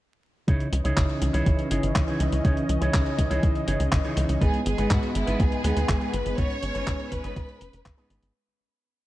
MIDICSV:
0, 0, Header, 1, 6, 480
1, 0, Start_track
1, 0, Key_signature, 4, "minor"
1, 0, Tempo, 491803
1, 468, Time_signature, 4, 2, 24, 8
1, 8843, End_track
2, 0, Start_track
2, 0, Title_t, "Violin section"
2, 0, Program_c, 0, 48
2, 4308, Note_on_c, 0, 68, 89
2, 4531, Note_off_c, 0, 68, 0
2, 4548, Note_on_c, 0, 68, 84
2, 4771, Note_off_c, 0, 68, 0
2, 4787, Note_on_c, 0, 66, 82
2, 5025, Note_on_c, 0, 64, 91
2, 5027, Note_off_c, 0, 66, 0
2, 5250, Note_off_c, 0, 64, 0
2, 5265, Note_on_c, 0, 68, 94
2, 5984, Note_on_c, 0, 71, 99
2, 5987, Note_off_c, 0, 68, 0
2, 6224, Note_on_c, 0, 73, 118
2, 6226, Note_off_c, 0, 71, 0
2, 6946, Note_off_c, 0, 73, 0
2, 6946, Note_on_c, 0, 71, 99
2, 7907, Note_off_c, 0, 71, 0
2, 8843, End_track
3, 0, Start_track
3, 0, Title_t, "Clean electric guitar"
3, 0, Program_c, 1, 27
3, 463, Note_on_c, 1, 49, 95
3, 466, Note_on_c, 1, 63, 76
3, 472, Note_on_c, 1, 68, 78
3, 475, Note_on_c, 1, 73, 86
3, 480, Note_on_c, 1, 64, 73
3, 654, Note_off_c, 1, 49, 0
3, 654, Note_off_c, 1, 63, 0
3, 654, Note_off_c, 1, 64, 0
3, 654, Note_off_c, 1, 68, 0
3, 654, Note_off_c, 1, 73, 0
3, 823, Note_on_c, 1, 64, 83
3, 828, Note_on_c, 1, 73, 99
3, 831, Note_on_c, 1, 68, 77
3, 836, Note_on_c, 1, 63, 86
3, 839, Note_on_c, 1, 49, 77
3, 1279, Note_off_c, 1, 49, 0
3, 1279, Note_off_c, 1, 63, 0
3, 1279, Note_off_c, 1, 64, 0
3, 1279, Note_off_c, 1, 68, 0
3, 1279, Note_off_c, 1, 73, 0
3, 1302, Note_on_c, 1, 64, 84
3, 1308, Note_on_c, 1, 73, 109
3, 1312, Note_on_c, 1, 68, 75
3, 1318, Note_on_c, 1, 63, 75
3, 1321, Note_on_c, 1, 49, 76
3, 1639, Note_off_c, 1, 49, 0
3, 1639, Note_off_c, 1, 63, 0
3, 1639, Note_off_c, 1, 64, 0
3, 1639, Note_off_c, 1, 68, 0
3, 1639, Note_off_c, 1, 73, 0
3, 1664, Note_on_c, 1, 64, 72
3, 1667, Note_on_c, 1, 73, 86
3, 1671, Note_on_c, 1, 68, 72
3, 1675, Note_on_c, 1, 63, 72
3, 1678, Note_on_c, 1, 49, 75
3, 1965, Note_off_c, 1, 49, 0
3, 1965, Note_off_c, 1, 63, 0
3, 1965, Note_off_c, 1, 64, 0
3, 1965, Note_off_c, 1, 68, 0
3, 1965, Note_off_c, 1, 73, 0
3, 2021, Note_on_c, 1, 64, 72
3, 2027, Note_on_c, 1, 73, 80
3, 2033, Note_on_c, 1, 68, 61
3, 2039, Note_on_c, 1, 63, 69
3, 2043, Note_on_c, 1, 49, 70
3, 2359, Note_off_c, 1, 49, 0
3, 2359, Note_off_c, 1, 63, 0
3, 2359, Note_off_c, 1, 64, 0
3, 2359, Note_off_c, 1, 68, 0
3, 2359, Note_off_c, 1, 73, 0
3, 2382, Note_on_c, 1, 49, 96
3, 2387, Note_on_c, 1, 63, 84
3, 2390, Note_on_c, 1, 68, 81
3, 2395, Note_on_c, 1, 73, 93
3, 2399, Note_on_c, 1, 64, 75
3, 2573, Note_off_c, 1, 49, 0
3, 2573, Note_off_c, 1, 63, 0
3, 2573, Note_off_c, 1, 64, 0
3, 2573, Note_off_c, 1, 68, 0
3, 2573, Note_off_c, 1, 73, 0
3, 2743, Note_on_c, 1, 64, 87
3, 2747, Note_on_c, 1, 73, 95
3, 2749, Note_on_c, 1, 68, 82
3, 2753, Note_on_c, 1, 63, 77
3, 2757, Note_on_c, 1, 49, 78
3, 3199, Note_off_c, 1, 49, 0
3, 3199, Note_off_c, 1, 63, 0
3, 3199, Note_off_c, 1, 64, 0
3, 3199, Note_off_c, 1, 68, 0
3, 3199, Note_off_c, 1, 73, 0
3, 3223, Note_on_c, 1, 64, 85
3, 3227, Note_on_c, 1, 73, 104
3, 3230, Note_on_c, 1, 68, 76
3, 3237, Note_on_c, 1, 63, 71
3, 3242, Note_on_c, 1, 49, 80
3, 3559, Note_off_c, 1, 49, 0
3, 3559, Note_off_c, 1, 63, 0
3, 3559, Note_off_c, 1, 64, 0
3, 3559, Note_off_c, 1, 68, 0
3, 3559, Note_off_c, 1, 73, 0
3, 3581, Note_on_c, 1, 64, 79
3, 3587, Note_on_c, 1, 73, 82
3, 3592, Note_on_c, 1, 68, 74
3, 3598, Note_on_c, 1, 63, 61
3, 3604, Note_on_c, 1, 49, 79
3, 3885, Note_off_c, 1, 49, 0
3, 3885, Note_off_c, 1, 63, 0
3, 3885, Note_off_c, 1, 64, 0
3, 3885, Note_off_c, 1, 68, 0
3, 3885, Note_off_c, 1, 73, 0
3, 3942, Note_on_c, 1, 64, 69
3, 3947, Note_on_c, 1, 73, 82
3, 3953, Note_on_c, 1, 68, 67
3, 3960, Note_on_c, 1, 63, 69
3, 3964, Note_on_c, 1, 49, 67
3, 4280, Note_off_c, 1, 49, 0
3, 4280, Note_off_c, 1, 63, 0
3, 4280, Note_off_c, 1, 64, 0
3, 4280, Note_off_c, 1, 68, 0
3, 4280, Note_off_c, 1, 73, 0
3, 4303, Note_on_c, 1, 44, 94
3, 4307, Note_on_c, 1, 63, 82
3, 4311, Note_on_c, 1, 59, 80
3, 4314, Note_on_c, 1, 68, 82
3, 4319, Note_on_c, 1, 71, 82
3, 4493, Note_off_c, 1, 63, 0
3, 4494, Note_off_c, 1, 44, 0
3, 4494, Note_off_c, 1, 59, 0
3, 4494, Note_off_c, 1, 68, 0
3, 4494, Note_off_c, 1, 71, 0
3, 4661, Note_on_c, 1, 68, 80
3, 4666, Note_on_c, 1, 71, 103
3, 4671, Note_on_c, 1, 59, 79
3, 4675, Note_on_c, 1, 63, 74
3, 4681, Note_on_c, 1, 44, 83
3, 5119, Note_off_c, 1, 44, 0
3, 5119, Note_off_c, 1, 59, 0
3, 5119, Note_off_c, 1, 63, 0
3, 5119, Note_off_c, 1, 68, 0
3, 5119, Note_off_c, 1, 71, 0
3, 5143, Note_on_c, 1, 71, 104
3, 5147, Note_on_c, 1, 68, 86
3, 5151, Note_on_c, 1, 63, 76
3, 5156, Note_on_c, 1, 59, 76
3, 5160, Note_on_c, 1, 44, 80
3, 5479, Note_off_c, 1, 63, 0
3, 5479, Note_off_c, 1, 68, 0
3, 5479, Note_off_c, 1, 71, 0
3, 5480, Note_off_c, 1, 44, 0
3, 5480, Note_off_c, 1, 59, 0
3, 5502, Note_on_c, 1, 68, 78
3, 5507, Note_on_c, 1, 71, 93
3, 5512, Note_on_c, 1, 63, 75
3, 5517, Note_on_c, 1, 59, 64
3, 5524, Note_on_c, 1, 44, 74
3, 5805, Note_off_c, 1, 44, 0
3, 5805, Note_off_c, 1, 59, 0
3, 5805, Note_off_c, 1, 63, 0
3, 5805, Note_off_c, 1, 68, 0
3, 5805, Note_off_c, 1, 71, 0
3, 5861, Note_on_c, 1, 68, 74
3, 5867, Note_on_c, 1, 71, 91
3, 5873, Note_on_c, 1, 63, 70
3, 5879, Note_on_c, 1, 59, 68
3, 5884, Note_on_c, 1, 44, 73
3, 6199, Note_off_c, 1, 59, 0
3, 6199, Note_off_c, 1, 68, 0
3, 6199, Note_off_c, 1, 71, 0
3, 6200, Note_off_c, 1, 44, 0
3, 6200, Note_off_c, 1, 63, 0
3, 6223, Note_on_c, 1, 44, 96
3, 6228, Note_on_c, 1, 59, 88
3, 6232, Note_on_c, 1, 63, 80
3, 6235, Note_on_c, 1, 68, 80
3, 6240, Note_on_c, 1, 71, 95
3, 6414, Note_off_c, 1, 44, 0
3, 6414, Note_off_c, 1, 59, 0
3, 6414, Note_off_c, 1, 63, 0
3, 6414, Note_off_c, 1, 68, 0
3, 6414, Note_off_c, 1, 71, 0
3, 6582, Note_on_c, 1, 68, 91
3, 6586, Note_on_c, 1, 71, 102
3, 6590, Note_on_c, 1, 63, 79
3, 6594, Note_on_c, 1, 59, 76
3, 6598, Note_on_c, 1, 44, 81
3, 7039, Note_off_c, 1, 44, 0
3, 7039, Note_off_c, 1, 59, 0
3, 7039, Note_off_c, 1, 63, 0
3, 7039, Note_off_c, 1, 68, 0
3, 7039, Note_off_c, 1, 71, 0
3, 7063, Note_on_c, 1, 68, 84
3, 7067, Note_on_c, 1, 71, 104
3, 7070, Note_on_c, 1, 63, 80
3, 7074, Note_on_c, 1, 59, 81
3, 7078, Note_on_c, 1, 44, 80
3, 7399, Note_off_c, 1, 44, 0
3, 7399, Note_off_c, 1, 59, 0
3, 7399, Note_off_c, 1, 63, 0
3, 7399, Note_off_c, 1, 68, 0
3, 7399, Note_off_c, 1, 71, 0
3, 7781, Note_on_c, 1, 68, 74
3, 7787, Note_on_c, 1, 71, 76
3, 7790, Note_on_c, 1, 59, 67
3, 7795, Note_on_c, 1, 63, 71
3, 7802, Note_on_c, 1, 44, 67
3, 8118, Note_off_c, 1, 63, 0
3, 8119, Note_off_c, 1, 44, 0
3, 8119, Note_off_c, 1, 59, 0
3, 8119, Note_off_c, 1, 68, 0
3, 8119, Note_off_c, 1, 71, 0
3, 8843, End_track
4, 0, Start_track
4, 0, Title_t, "Analog synth pad"
4, 0, Program_c, 2, 89
4, 468, Note_on_c, 2, 52, 81
4, 468, Note_on_c, 2, 61, 77
4, 468, Note_on_c, 2, 75, 90
4, 4270, Note_off_c, 2, 52, 0
4, 4270, Note_off_c, 2, 61, 0
4, 4307, Note_on_c, 2, 56, 84
4, 4307, Note_on_c, 2, 59, 75
4, 6189, Note_off_c, 2, 75, 0
4, 6226, Note_on_c, 2, 61, 93
4, 8109, Note_off_c, 2, 56, 0
4, 8109, Note_off_c, 2, 59, 0
4, 8128, Note_off_c, 2, 61, 0
4, 8843, End_track
5, 0, Start_track
5, 0, Title_t, "Analog synth bass"
5, 0, Program_c, 3, 38
5, 469, Note_on_c, 3, 37, 99
5, 555, Note_off_c, 3, 37, 0
5, 708, Note_on_c, 3, 37, 97
5, 794, Note_off_c, 3, 37, 0
5, 827, Note_on_c, 3, 37, 82
5, 914, Note_off_c, 3, 37, 0
5, 949, Note_on_c, 3, 32, 106
5, 1035, Note_off_c, 3, 32, 0
5, 1188, Note_on_c, 3, 37, 92
5, 1274, Note_off_c, 3, 37, 0
5, 1308, Note_on_c, 3, 37, 84
5, 1394, Note_off_c, 3, 37, 0
5, 1428, Note_on_c, 3, 32, 92
5, 1515, Note_off_c, 3, 32, 0
5, 1668, Note_on_c, 3, 32, 88
5, 1754, Note_off_c, 3, 32, 0
5, 1788, Note_on_c, 3, 32, 82
5, 1875, Note_off_c, 3, 32, 0
5, 1908, Note_on_c, 3, 37, 95
5, 1995, Note_off_c, 3, 37, 0
5, 2147, Note_on_c, 3, 37, 96
5, 2234, Note_off_c, 3, 37, 0
5, 2267, Note_on_c, 3, 37, 77
5, 2354, Note_off_c, 3, 37, 0
5, 2388, Note_on_c, 3, 37, 100
5, 2475, Note_off_c, 3, 37, 0
5, 2627, Note_on_c, 3, 37, 95
5, 2714, Note_off_c, 3, 37, 0
5, 2748, Note_on_c, 3, 37, 80
5, 2834, Note_off_c, 3, 37, 0
5, 2868, Note_on_c, 3, 37, 104
5, 2955, Note_off_c, 3, 37, 0
5, 3108, Note_on_c, 3, 37, 91
5, 3195, Note_off_c, 3, 37, 0
5, 3228, Note_on_c, 3, 37, 84
5, 3314, Note_off_c, 3, 37, 0
5, 3349, Note_on_c, 3, 37, 89
5, 3435, Note_off_c, 3, 37, 0
5, 3588, Note_on_c, 3, 32, 87
5, 3674, Note_off_c, 3, 32, 0
5, 3707, Note_on_c, 3, 37, 80
5, 3794, Note_off_c, 3, 37, 0
5, 3829, Note_on_c, 3, 32, 96
5, 3915, Note_off_c, 3, 32, 0
5, 4069, Note_on_c, 3, 37, 99
5, 4155, Note_off_c, 3, 37, 0
5, 4188, Note_on_c, 3, 37, 77
5, 4274, Note_off_c, 3, 37, 0
5, 4308, Note_on_c, 3, 32, 103
5, 4394, Note_off_c, 3, 32, 0
5, 4548, Note_on_c, 3, 32, 97
5, 4635, Note_off_c, 3, 32, 0
5, 4668, Note_on_c, 3, 32, 85
5, 4754, Note_off_c, 3, 32, 0
5, 4788, Note_on_c, 3, 44, 104
5, 4875, Note_off_c, 3, 44, 0
5, 5028, Note_on_c, 3, 32, 94
5, 5115, Note_off_c, 3, 32, 0
5, 5148, Note_on_c, 3, 32, 82
5, 5234, Note_off_c, 3, 32, 0
5, 5268, Note_on_c, 3, 39, 93
5, 5355, Note_off_c, 3, 39, 0
5, 5507, Note_on_c, 3, 39, 90
5, 5594, Note_off_c, 3, 39, 0
5, 5628, Note_on_c, 3, 39, 80
5, 5714, Note_off_c, 3, 39, 0
5, 5748, Note_on_c, 3, 32, 102
5, 5835, Note_off_c, 3, 32, 0
5, 5986, Note_on_c, 3, 32, 98
5, 6074, Note_off_c, 3, 32, 0
5, 6106, Note_on_c, 3, 32, 82
5, 6194, Note_off_c, 3, 32, 0
5, 6228, Note_on_c, 3, 32, 97
5, 6315, Note_off_c, 3, 32, 0
5, 6467, Note_on_c, 3, 32, 96
5, 6554, Note_off_c, 3, 32, 0
5, 6587, Note_on_c, 3, 32, 83
5, 6674, Note_off_c, 3, 32, 0
5, 6708, Note_on_c, 3, 32, 101
5, 6794, Note_off_c, 3, 32, 0
5, 6948, Note_on_c, 3, 32, 90
5, 7035, Note_off_c, 3, 32, 0
5, 7067, Note_on_c, 3, 32, 81
5, 7154, Note_off_c, 3, 32, 0
5, 7187, Note_on_c, 3, 32, 98
5, 7274, Note_off_c, 3, 32, 0
5, 7426, Note_on_c, 3, 30, 86
5, 7514, Note_off_c, 3, 30, 0
5, 7547, Note_on_c, 3, 30, 83
5, 7634, Note_off_c, 3, 30, 0
5, 7668, Note_on_c, 3, 32, 97
5, 7754, Note_off_c, 3, 32, 0
5, 7907, Note_on_c, 3, 32, 95
5, 7994, Note_off_c, 3, 32, 0
5, 8027, Note_on_c, 3, 32, 79
5, 8114, Note_off_c, 3, 32, 0
5, 8843, End_track
6, 0, Start_track
6, 0, Title_t, "Drums"
6, 469, Note_on_c, 9, 36, 111
6, 469, Note_on_c, 9, 42, 51
6, 566, Note_off_c, 9, 36, 0
6, 567, Note_off_c, 9, 42, 0
6, 589, Note_on_c, 9, 42, 25
6, 687, Note_off_c, 9, 42, 0
6, 709, Note_on_c, 9, 42, 88
6, 806, Note_off_c, 9, 42, 0
6, 828, Note_on_c, 9, 42, 49
6, 926, Note_off_c, 9, 42, 0
6, 948, Note_on_c, 9, 39, 106
6, 948, Note_on_c, 9, 42, 50
6, 949, Note_on_c, 9, 36, 104
6, 1046, Note_off_c, 9, 36, 0
6, 1046, Note_off_c, 9, 39, 0
6, 1046, Note_off_c, 9, 42, 0
6, 1068, Note_on_c, 9, 42, 25
6, 1165, Note_off_c, 9, 42, 0
6, 1188, Note_on_c, 9, 42, 90
6, 1285, Note_off_c, 9, 42, 0
6, 1309, Note_on_c, 9, 42, 50
6, 1406, Note_off_c, 9, 42, 0
6, 1428, Note_on_c, 9, 36, 110
6, 1428, Note_on_c, 9, 42, 50
6, 1526, Note_off_c, 9, 36, 0
6, 1526, Note_off_c, 9, 42, 0
6, 1549, Note_on_c, 9, 42, 27
6, 1647, Note_off_c, 9, 42, 0
6, 1669, Note_on_c, 9, 42, 92
6, 1766, Note_off_c, 9, 42, 0
6, 1789, Note_on_c, 9, 42, 50
6, 1886, Note_off_c, 9, 42, 0
6, 1908, Note_on_c, 9, 39, 120
6, 1908, Note_on_c, 9, 42, 53
6, 1909, Note_on_c, 9, 36, 109
6, 2006, Note_off_c, 9, 36, 0
6, 2006, Note_off_c, 9, 39, 0
6, 2006, Note_off_c, 9, 42, 0
6, 2029, Note_on_c, 9, 42, 24
6, 2127, Note_off_c, 9, 42, 0
6, 2148, Note_on_c, 9, 42, 91
6, 2246, Note_off_c, 9, 42, 0
6, 2269, Note_on_c, 9, 42, 51
6, 2366, Note_off_c, 9, 42, 0
6, 2388, Note_on_c, 9, 36, 118
6, 2388, Note_on_c, 9, 42, 50
6, 2486, Note_off_c, 9, 36, 0
6, 2486, Note_off_c, 9, 42, 0
6, 2509, Note_on_c, 9, 42, 27
6, 2607, Note_off_c, 9, 42, 0
6, 2628, Note_on_c, 9, 42, 90
6, 2726, Note_off_c, 9, 42, 0
6, 2749, Note_on_c, 9, 42, 51
6, 2846, Note_off_c, 9, 42, 0
6, 2868, Note_on_c, 9, 36, 107
6, 2869, Note_on_c, 9, 39, 111
6, 2869, Note_on_c, 9, 42, 47
6, 2966, Note_off_c, 9, 36, 0
6, 2966, Note_off_c, 9, 39, 0
6, 2966, Note_off_c, 9, 42, 0
6, 2989, Note_on_c, 9, 42, 25
6, 3086, Note_off_c, 9, 42, 0
6, 3108, Note_on_c, 9, 36, 59
6, 3109, Note_on_c, 9, 42, 85
6, 3206, Note_off_c, 9, 36, 0
6, 3206, Note_off_c, 9, 42, 0
6, 3229, Note_on_c, 9, 42, 49
6, 3327, Note_off_c, 9, 42, 0
6, 3348, Note_on_c, 9, 36, 109
6, 3349, Note_on_c, 9, 42, 48
6, 3446, Note_off_c, 9, 36, 0
6, 3446, Note_off_c, 9, 42, 0
6, 3469, Note_on_c, 9, 42, 25
6, 3566, Note_off_c, 9, 42, 0
6, 3589, Note_on_c, 9, 42, 88
6, 3686, Note_off_c, 9, 42, 0
6, 3709, Note_on_c, 9, 42, 50
6, 3806, Note_off_c, 9, 42, 0
6, 3828, Note_on_c, 9, 36, 115
6, 3828, Note_on_c, 9, 39, 123
6, 3828, Note_on_c, 9, 42, 52
6, 3926, Note_off_c, 9, 36, 0
6, 3926, Note_off_c, 9, 39, 0
6, 3926, Note_off_c, 9, 42, 0
6, 3948, Note_on_c, 9, 42, 24
6, 4046, Note_off_c, 9, 42, 0
6, 4068, Note_on_c, 9, 42, 90
6, 4166, Note_off_c, 9, 42, 0
6, 4188, Note_on_c, 9, 42, 52
6, 4286, Note_off_c, 9, 42, 0
6, 4308, Note_on_c, 9, 36, 116
6, 4309, Note_on_c, 9, 42, 49
6, 4406, Note_off_c, 9, 36, 0
6, 4406, Note_off_c, 9, 42, 0
6, 4428, Note_on_c, 9, 42, 25
6, 4526, Note_off_c, 9, 42, 0
6, 4548, Note_on_c, 9, 42, 86
6, 4645, Note_off_c, 9, 42, 0
6, 4668, Note_on_c, 9, 42, 47
6, 4766, Note_off_c, 9, 42, 0
6, 4788, Note_on_c, 9, 36, 117
6, 4788, Note_on_c, 9, 39, 113
6, 4788, Note_on_c, 9, 42, 49
6, 4885, Note_off_c, 9, 39, 0
6, 4885, Note_off_c, 9, 42, 0
6, 4886, Note_off_c, 9, 36, 0
6, 4907, Note_on_c, 9, 42, 23
6, 5005, Note_off_c, 9, 42, 0
6, 5028, Note_on_c, 9, 42, 85
6, 5126, Note_off_c, 9, 42, 0
6, 5148, Note_on_c, 9, 42, 47
6, 5245, Note_off_c, 9, 42, 0
6, 5268, Note_on_c, 9, 36, 113
6, 5268, Note_on_c, 9, 42, 47
6, 5365, Note_off_c, 9, 42, 0
6, 5366, Note_off_c, 9, 36, 0
6, 5388, Note_on_c, 9, 42, 25
6, 5486, Note_off_c, 9, 42, 0
6, 5508, Note_on_c, 9, 42, 91
6, 5605, Note_off_c, 9, 42, 0
6, 5628, Note_on_c, 9, 42, 49
6, 5726, Note_off_c, 9, 42, 0
6, 5748, Note_on_c, 9, 36, 122
6, 5748, Note_on_c, 9, 39, 126
6, 5748, Note_on_c, 9, 42, 51
6, 5846, Note_off_c, 9, 36, 0
6, 5846, Note_off_c, 9, 39, 0
6, 5846, Note_off_c, 9, 42, 0
6, 5869, Note_on_c, 9, 42, 24
6, 5966, Note_off_c, 9, 42, 0
6, 5987, Note_on_c, 9, 42, 89
6, 6085, Note_off_c, 9, 42, 0
6, 6108, Note_on_c, 9, 42, 46
6, 6205, Note_off_c, 9, 42, 0
6, 6227, Note_on_c, 9, 42, 49
6, 6228, Note_on_c, 9, 36, 121
6, 6325, Note_off_c, 9, 42, 0
6, 6326, Note_off_c, 9, 36, 0
6, 6348, Note_on_c, 9, 42, 24
6, 6445, Note_off_c, 9, 42, 0
6, 6467, Note_on_c, 9, 42, 84
6, 6565, Note_off_c, 9, 42, 0
6, 6588, Note_on_c, 9, 42, 48
6, 6686, Note_off_c, 9, 42, 0
6, 6708, Note_on_c, 9, 36, 114
6, 6708, Note_on_c, 9, 39, 110
6, 6708, Note_on_c, 9, 42, 46
6, 6805, Note_off_c, 9, 36, 0
6, 6805, Note_off_c, 9, 39, 0
6, 6805, Note_off_c, 9, 42, 0
6, 6828, Note_on_c, 9, 42, 24
6, 6925, Note_off_c, 9, 42, 0
6, 6947, Note_on_c, 9, 42, 86
6, 6948, Note_on_c, 9, 36, 60
6, 7045, Note_off_c, 9, 36, 0
6, 7045, Note_off_c, 9, 42, 0
6, 7067, Note_on_c, 9, 42, 48
6, 7165, Note_off_c, 9, 42, 0
6, 7188, Note_on_c, 9, 36, 116
6, 7188, Note_on_c, 9, 42, 49
6, 7285, Note_off_c, 9, 36, 0
6, 7285, Note_off_c, 9, 42, 0
6, 7308, Note_on_c, 9, 42, 24
6, 7405, Note_off_c, 9, 42, 0
6, 7427, Note_on_c, 9, 42, 88
6, 7525, Note_off_c, 9, 42, 0
6, 7548, Note_on_c, 9, 42, 47
6, 7645, Note_off_c, 9, 42, 0
6, 7668, Note_on_c, 9, 36, 118
6, 7668, Note_on_c, 9, 39, 124
6, 7668, Note_on_c, 9, 42, 51
6, 7765, Note_off_c, 9, 36, 0
6, 7765, Note_off_c, 9, 39, 0
6, 7765, Note_off_c, 9, 42, 0
6, 7788, Note_on_c, 9, 42, 22
6, 7886, Note_off_c, 9, 42, 0
6, 7908, Note_on_c, 9, 42, 83
6, 8005, Note_off_c, 9, 42, 0
6, 8028, Note_on_c, 9, 42, 49
6, 8125, Note_off_c, 9, 42, 0
6, 8843, End_track
0, 0, End_of_file